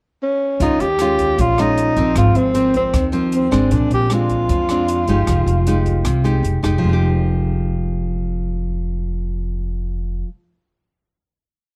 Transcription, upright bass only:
0.60 D#2
0.80 D#2
1.38 A#1
1.97 A#1
2.15 G#1
2.35 G#1
2.93 D#2
3.52 G#1
3.71 A#1
3.90 A#1
4.49 F2
5.08 G1
5.27 F1
5.46 F1
6.05 C2
6.43 F1
6.63 F1
6.82 F1

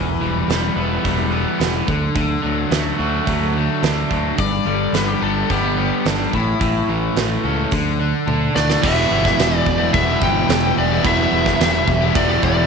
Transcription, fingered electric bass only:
Already playing: E1
0.21 E1
0.48 E1
0.76 E1
1.04 E1
1.60 E1
1.88 D2
2.15 D2
2.44 D2
2.71 D2
2.99 D2
3.27 D2
3.83 D2
4.11 D2
4.38 G1
4.65 G1
4.93 G1
5.22 G1
5.50 G1
6.05 G1
6.33 A1
6.61 A1
6.88 A1
7.16 A1
7.44 C#2
7.72 D2
8.27 D2
8.55 D2
8.84 E1
9.11 G1
9.38 E1
9.66 E1
9.94 E1
10.22 G1
10.49 E1
10.77 E1
11.05 E1
11.32 E1
11.60 E1
11.87 E1
12.15 E1
12.43 E1

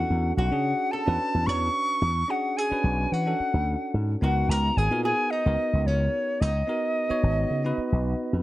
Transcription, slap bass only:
0.10 E2
0.37 B1
0.51 C#3
1.07 E2
1.34 E2
1.47 E2
2.02 E2
2.71 muted slap bass stroke
2.84 B1
3.12 E3
3.40 muted slap bass stroke
3.54 D2
3.94 G#2
4.22 C#2
4.49 C#2
4.77 G#1
4.91 A#2
5.46 C#2
5.73 C#2
5.86 C#2
6.41 C#2
7.10 muted slap bass stroke
7.23 G#1
7.50 C#3
7.78 muted slap bass stroke
7.92 B1
8.33 F2

